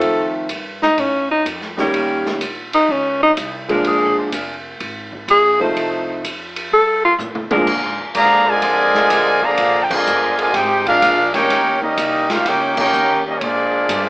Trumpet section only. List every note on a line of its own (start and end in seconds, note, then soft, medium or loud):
8.16 8.45 G#4 loud
8.16 8.45 D5 loud
8.16 8.45 F5 loud
8.16 8.45 A#5 loud
8.47 9.43 F4 loud
8.47 9.43 A#4 loud
8.47 9.43 D5 medium
8.47 9.43 G#5 loud
9.44 9.82 G#4 loud
9.44 9.82 D5 loud
9.44 9.82 F5 loud
9.44 9.82 A#5 loud
9.83 9.91 G5 medium
9.92 10.39 F4 medium
9.92 10.39 A#4 medium
9.92 10.39 D5 medium
9.92 10.39 G#5 loud
10.40 10.54 F4 medium
10.40 10.54 A#4 medium
10.40 10.54 D5 medium
10.40 10.54 G#5 loud
10.56 10.87 D#4 medium
10.56 10.87 G#4 medium
10.56 10.87 C5 medium
10.56 10.87 G5 loud
10.88 11.32 D4 loud
10.88 11.32 G#4 medium
10.88 11.32 A#4 medium
10.88 11.32 F5 loud
11.35 11.79 D#4 loud
11.35 11.79 A#4 medium
11.35 11.79 C#5 loud
11.35 11.79 G5 loud
11.83 12.30 C#4 medium
11.83 12.31 G4 medium
11.83 12.30 A#4 medium
11.83 12.30 D#5 medium
12.32 12.46 C#4 medium
12.32 12.46 G4 medium
12.32 12.47 A#4 medium
12.32 12.46 F5 medium
12.48 12.79 D#4 medium
12.48 12.79 A#4 medium
12.48 12.79 C#5 medium
12.48 12.79 G5 loud
12.80 13.24 D#4 loud
12.80 13.24 A#4 medium
12.80 13.23 C#5 medium
12.80 13.24 G5 loud
13.28 13.37 C#4 medium
13.28 13.37 G4 medium
13.28 13.37 A#4 medium
13.28 13.37 D#5 medium
13.38 13.42 C#5 medium
13.43 14.09 A#3 medium
13.43 14.09 F4 medium
13.43 14.09 G#4 medium
13.43 14.09 D5 medium